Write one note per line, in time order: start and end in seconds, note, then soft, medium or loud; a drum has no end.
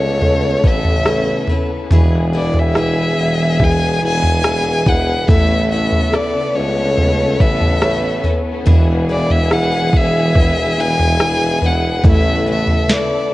0.00 0.60 C#2 medium
0.00 1.87 C#3 medium
0.00 0.64 A3 soft
0.00 1.87 A3 soft
0.00 13.34 B3 soft
0.00 0.66 E4 soft
0.00 0.20 A4 soft
0.00 1.87 A4 medium
0.00 0.20 B4 soft
0.00 0.64 B4 soft
0.00 0.69 C#5 medium
0.00 0.20 E5 soft
0.22 1.04 A4 soft
0.22 1.04 B4 soft
0.22 1.04 C#5 soft
0.22 floor tom soft
0.64 1.45 A1 medium
0.64 1.07 C#4 soft
0.64 1.06 E4 soft
0.64 1.06 B4 soft
0.64 1.50 E5 medium
0.64 kick medium
0.85 floor tom medium
1.06 1.49 A3 soft
1.06 1.49 C#4 medium
1.06 1.49 E4 soft
1.06 1.89 A4 soft
1.06 1.88 B4 soft
1.06 1.48 B4 soft
1.06 1.89 C#5 soft
1.06 cross-stick medium
1.47 1.92 C#4 soft
1.47 1.91 E4 soft
1.47 1.91 B4 soft
1.47 floor tom soft
1.90 3.14 E1 medium
1.90 5.25 E3 medium
1.90 2.33 E3 medium
1.90 5.25 E3 medium
1.90 2.33 E4 medium
1.90 5.26 G#4 medium
1.90 2.33 G#4 medium
1.90 2.32 B4 medium
1.90 floor tom medium
2.33 2.75 E4 soft
2.33 2.76 G#4 soft
2.33 2.75 B4 soft
2.33 2.60 D5 medium
2.54 floor tom soft
2.59 2.77 E5 medium
2.75 4.44 E3 soft
2.75 3.57 E4 soft
2.75 4.04 E4 soft
2.75 3.57 G#4 soft
2.75 4.02 G#4 soft
2.75 3.57 B4 soft
2.75 4.02 B4 medium
2.75 cross-stick medium
2.79 3.66 E5 medium
3.17 3.98 E1 medium
3.59 4.42 E4 soft
3.59 4.42 G#4 soft
3.59 4.42 B4 soft
3.59 kick medium
3.59 floor tom soft
3.64 4.04 G#5 medium
4.02 4.82 E1 medium
4.02 4.44 E4 soft
4.02 4.44 G#4 soft
4.02 4.45 B4 soft
4.02 4.90 G#5 medium
4.23 floor tom medium
4.44 4.86 E3 soft
4.44 5.26 E4 soft
4.44 4.87 E4 medium
4.44 5.26 G#4 soft
4.44 4.86 G#4 medium
4.44 5.27 B4 soft
4.44 4.85 B4 medium
4.44 cross-stick medium
4.86 5.26 E1 medium
4.86 5.29 E4 soft
4.86 5.29 G#4 soft
4.86 5.29 B4 soft
4.86 5.29 F#5 medium
4.86 kick medium
4.86 floor tom soft
5.28 6.24 A1 medium
5.28 8.64 C#3 medium
5.28 8.63 A3 medium
5.28 5.71 A3 medium
5.28 5.72 C#4 medium
5.28 5.72 E4 medium
5.28 8.64 A4 medium
5.28 5.71 B4 medium
5.28 5.69 E5 medium
5.28 kick medium
5.28 floor tom medium
5.72 6.14 C#4 soft
5.72 6.13 E4 soft
5.72 6.14 B4 soft
5.72 6.16 E5 medium
5.92 floor tom soft
6.12 7.40 A3 soft
6.12 7.41 E4 medium
6.12 6.95 A4 soft
6.12 6.95 B4 soft
6.12 7.40 B4 medium
6.12 6.57 D5 medium
6.12 6.95 E5 soft
6.12 cross-stick medium
6.56 7.36 C#2 medium
6.56 7.43 C#5 medium
6.97 7.80 A4 soft
6.97 7.80 B4 soft
6.97 7.80 C#5 soft
6.97 floor tom soft
7.40 8.20 A1 medium
7.40 7.82 C#4 soft
7.40 7.82 E4 soft
7.40 7.82 B4 soft
7.40 8.25 E5 medium
7.40 kick medium
7.61 floor tom medium
7.82 8.24 A3 soft
7.82 8.24 C#4 medium
7.82 8.25 E4 soft
7.82 8.64 A4 soft
7.82 8.64 B4 soft
7.82 8.23 B4 medium
7.82 8.64 C#5 soft
7.82 cross-stick medium
8.24 8.66 C#4 soft
8.24 8.65 E4 soft
8.24 8.66 B4 soft
8.24 floor tom soft
8.66 9.89 E1 medium
8.66 9.08 E3 medium
8.66 12.01 E3 medium
8.66 12.03 E3 medium
8.66 9.09 E4 medium
8.66 9.09 G#4 medium
8.66 12.03 G#4 medium
8.66 9.08 B4 medium
8.66 floor tom medium
9.09 9.51 E4 soft
9.09 9.52 G#4 soft
9.09 9.51 B4 soft
9.09 9.33 D5 medium
9.30 9.54 E5 medium
9.30 floor tom soft
9.50 11.20 E3 soft
9.50 10.33 E4 soft
9.50 10.80 E4 medium
9.50 10.33 G#4 soft
9.50 10.79 G#4 medium
9.50 10.33 B4 soft
9.50 10.78 B4 medium
9.50 9.98 F#5 medium
9.50 cross-stick medium
9.93 10.74 E1 medium
9.93 10.82 E5 medium
9.93 kick medium
10.35 11.17 E4 soft
10.35 11.17 G#4 soft
10.35 11.18 B4 soft
10.35 kick medium
10.35 floor tom soft
10.78 11.58 E1 medium
10.78 11.20 E4 soft
10.78 11.21 G#4 soft
10.78 11.20 B4 soft
10.78 11.67 G#5 medium
10.99 floor tom medium
11.19 11.63 E3 soft
11.19 12.02 E4 soft
11.19 11.63 E4 soft
11.19 12.02 G#4 soft
11.19 11.62 G#4 soft
11.19 12.02 B4 soft
11.19 11.61 B4 soft
11.19 cross-stick medium
11.62 12.02 E1 medium
11.62 12.04 E4 soft
11.62 12.05 G#4 soft
11.62 12.04 B4 soft
11.62 floor tom soft
11.66 12.06 F#5 medium
12.04 13.00 A1 medium
12.04 13.34 C#3 medium
12.04 12.47 A3 medium
12.04 13.34 A3 medium
12.04 12.46 C#4 medium
12.04 12.47 E4 medium
12.04 13.34 A4 medium
12.04 12.45 B4 medium
12.04 kick medium
12.04 floor tom medium
12.10 12.47 E5 medium
12.46 12.89 C#4 soft
12.46 12.88 E4 soft
12.46 12.89 B4 soft
12.52 12.94 E5 medium
12.67 floor tom soft
12.88 13.34 A3 soft
12.88 13.34 E4 medium
12.88 13.34 A4 soft
12.88 13.34 B4 soft
12.88 13.34 B4 medium
12.88 13.34 E5 soft
12.88 snare medium
12.92 13.34 D5 medium